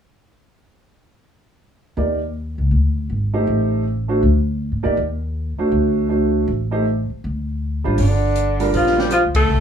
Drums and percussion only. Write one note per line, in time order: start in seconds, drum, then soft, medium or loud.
7.98 kick soft
7.98 open hi-hat soft
8.36 closed hi-hat soft
8.60 open hi-hat soft
8.73 kick soft
8.73 open hi-hat soft
8.86 snare soft
8.99 snare soft
9.11 cross-stick medium
9.11 closed hi-hat soft
9.35 kick medium
9.35 ride medium